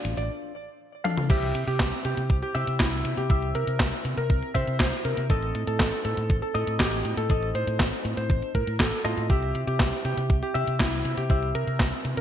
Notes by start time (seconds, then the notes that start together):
Already playing: D4 F4 A4 F5
0.05 A1, closed hi-hat
0.17 A1 D5, closed hi-hat
1.04 D4 F4 A4 F5, high tom
1.17 mid tom
1.30 C2 C4 E4 G4 E5, kick, closed hi-hat, crash
1.42 closed hi-hat
1.55 C3, closed hi-hat
1.67 C3 G4, closed hi-hat
1.80 C2, kick, snare, clap, closed hi-hat
1.92 closed hi-hat
2.05 C3 G4, closed hi-hat
2.17 C3, closed hi-hat
2.30 C2, kick, closed hi-hat
2.42 G4, closed hi-hat
2.55 C3 C4 E4 G4 E5, closed hi-hat
2.67 C3, closed hi-hat
2.80 C2 E4, kick, snare, clap, closed hi-hat
2.92 closed hi-hat
3.05 C3, closed hi-hat
3.17 C3 G4, closed hi-hat
3.29 C2 C4 E4 G4 E5, kick, closed hi-hat
3.42 closed hi-hat
3.55 C3 A#4, closed hi-hat
3.67 C3, closed hi-hat
3.80 C2, kick, snare, clap, closed hi-hat
3.92 closed hi-hat
4.05 C3, closed hi-hat
4.17 C3 A#4, closed hi-hat
4.30 C2, kick, closed hi-hat
4.42 closed hi-hat
4.54 C3 C4 E4 G4 C5 E5, kick, closed hi-hat
4.67 C3, closed hi-hat
4.80 C2 C5, kick, snare, clap, closed hi-hat
4.92 closed hi-hat
5.05 C3 A#4, closed hi-hat
5.17 C3, closed hi-hat
5.30 A1 C4 D#4 A4 D#5, kick, closed hi-hat
5.42 closed hi-hat
5.55 A2, closed hi-hat
5.67 A2 A4, closed hi-hat
5.80 A1, kick, snare, clap, closed hi-hat
5.92 closed hi-hat
6.05 A2 A4, closed hi-hat
6.17 A2, closed hi-hat
6.30 A1, kick, closed hi-hat
6.42 A4, closed hi-hat
6.54 A2 C4 D#4 A4 D#5, closed hi-hat
6.67 A2, closed hi-hat
6.80 A1 G4, kick, snare, clap, closed hi-hat
6.92 closed hi-hat
7.05 A2, closed hi-hat
7.17 A2 A4, closed hi-hat
7.29 A1 C4 D#4 A4 D#5, kick, closed hi-hat
7.43 closed hi-hat
7.55 A2 C5, closed hi-hat
7.67 A2, closed hi-hat
7.80 A1, kick, snare, clap, closed hi-hat
7.92 closed hi-hat
8.05 A2, closed hi-hat
8.17 A2 C5, closed hi-hat
8.30 A1, kick, closed hi-hat
8.42 closed hi-hat
8.55 A2 A#4, kick, closed hi-hat
8.67 A2, closed hi-hat
8.80 A1 A4, kick, snare, clap, closed hi-hat
8.92 closed hi-hat
9.05 A2 C4 D#4 F4 A4 D#5, closed hi-hat
9.17 A2, closed hi-hat
9.29 C2 C4 E4 G4 E5, kick, closed hi-hat
9.42 closed hi-hat
9.55 C3, closed hi-hat
9.67 C3 G4, closed hi-hat
9.80 C2, kick, snare, clap, closed hi-hat
9.92 closed hi-hat
10.05 C3 G4, closed hi-hat
10.17 C3, closed hi-hat
10.30 C2, kick, closed hi-hat
10.43 G4, closed hi-hat
10.54 C3 C4 E4 G4 E5, closed hi-hat
10.67 C3, closed hi-hat
10.80 C2 E4, kick, snare, clap, closed hi-hat
10.93 closed hi-hat
11.05 C3, closed hi-hat
11.17 C3 G4, closed hi-hat
11.30 C2 C4 E4 G4 E5, kick, closed hi-hat
11.43 closed hi-hat
11.55 C3 A#4, closed hi-hat
11.67 C3, closed hi-hat
11.80 C2, kick, snare, clap, closed hi-hat
11.93 closed hi-hat
12.05 C3, closed hi-hat
12.17 C3 A#4, closed hi-hat